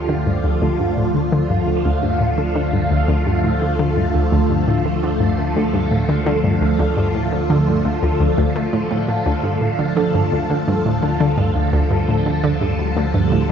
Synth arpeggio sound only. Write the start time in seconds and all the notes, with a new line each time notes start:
0.09 D3
0.26 G2
0.44 D2
0.62 D2
0.79 G2
0.97 A2
1.15 D3
1.32 D3
1.50 G2
1.68 D2
1.85 D2
2.03 G2
2.20 A2
2.38 D3
2.56 D3
2.73 G2
2.91 D2
3.08 D2
3.26 G2
3.44 A2
3.62 D3
3.79 D3
3.97 G2
4.15 D2
4.32 D2
4.50 G2
4.68 A2
4.85 D3
5.03 D3
5.20 G2
5.38 D2
5.56 D2
5.74 G2
5.91 A2
6.09 D3
6.26 D3
6.44 G2
6.61 D2
6.79 D2
6.97 G2
7.15 A2
7.32 D3
7.50 D3
7.67 G2
7.85 D2
8.03 D2
8.20 D2
8.38 D2
8.56 A3
8.73 A2
8.91 A2
9.08 A2
9.26 D2
9.44 G2
9.61 A2
9.79 D3
9.97 D3
10.15 G2
10.32 D2
10.50 D2
10.68 G2
10.86 A2
11.03 D3
11.20 D3
11.38 G2
11.55 D2
11.73 D2
11.91 G2
12.09 A2
12.26 D3
12.44 D3
12.61 G2
12.79 D2
12.97 D2
13.14 G2
13.32 A2